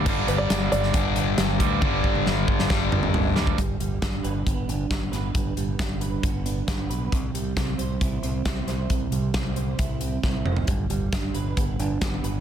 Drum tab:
CC |x---------------|----------------|----------------|----------------|
HH |--x-x-x-x-x-x-x-|----------------|x-x-x-x-x-x-x-x-|x-x-x-x-x-x-x-x-|
SD |----o--o----o---|----o--oo-----o-|----o-------o-o-|----o-------o---|
T1 |----------------|o--o------------|----------------|----------------|
T2 |----------------|----------oo----|----------------|----------------|
FT |----------------|------------o---|----------------|----------------|
BD |o-------o-----o-|o-o---o-o------o|o---o---o---o---|o---o---o---o---|

CC |----------------|----------------|----------------|
HH |x-x-x-x-x-x-x-x-|x-x-x-x-x-x-----|x-x-x-x-x-x-x-x-|
SD |----o-------o-o-|----o-------o---|----o-------o---|
T1 |----------------|----------------|----------------|
T2 |----------------|--------------o-|----------------|
FT |----------------|---------------o|----------------|
BD |o---o---o---o---|o---o---o---o---|o---o---o---o---|